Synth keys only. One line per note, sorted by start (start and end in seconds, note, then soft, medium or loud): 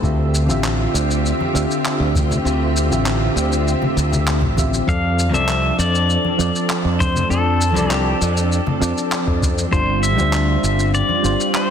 0.02 0.44 D3 medium
0.02 0.45 C4 medium
0.02 0.45 F4 medium
0.02 0.45 G4 medium
0.02 0.46 E5 medium
0.46 1.50 D3 medium
0.46 1.50 C4 medium
0.46 1.51 F4 medium
0.46 1.52 G4 medium
0.51 1.52 E5 loud
1.53 1.71 D3 medium
1.53 1.71 C4 medium
1.53 1.71 F4 medium
1.53 1.72 G4 medium
1.53 1.72 E5 medium
2.44 2.87 D3 medium
2.44 2.87 C4 medium
2.44 2.87 F4 medium
2.44 2.88 G4 medium
2.44 2.88 E5 medium
2.89 3.92 D3 medium
2.89 3.93 C4 medium
2.89 3.93 F4 medium
2.89 3.94 G4 medium
2.93 3.95 E5 loud
4.56 4.74 D3 medium
4.56 4.74 C4 medium
4.56 4.74 F4 medium
4.56 4.75 G4 medium
4.56 4.75 E5 medium
4.87 5.29 F3 medium
4.87 5.30 C4 medium
4.87 5.30 A4 medium
4.87 5.30 D5 medium
5.30 6.34 F3 medium
5.30 6.35 C4 medium
5.30 6.36 A4 medium
5.35 6.37 D5 loud
6.38 6.56 F3 medium
6.38 6.56 C4 medium
6.38 6.56 A4 medium
6.38 6.57 D5 loud
7.29 7.71 F3 medium
7.29 7.72 C4 medium
7.29 7.72 A4 medium
7.29 7.73 D5 medium
7.73 8.77 F3 medium
7.73 8.78 C4 medium
7.73 8.79 A4 medium
7.78 8.79 D5 loud
8.80 8.98 F3 medium
8.80 8.98 C4 medium
8.80 8.99 A4 medium
8.80 8.99 D5 medium
9.71 10.14 G3 medium
9.71 10.14 D4 medium
9.71 10.15 F4 medium
9.71 10.15 C5 medium
10.16 11.19 G3 medium
10.16 11.20 D4 medium
10.16 11.21 F4 medium
10.21 11.22 C5 loud
11.23 11.40 G3 medium
11.23 11.41 D4 medium
11.23 11.41 F4 medium
11.23 11.42 C5 loud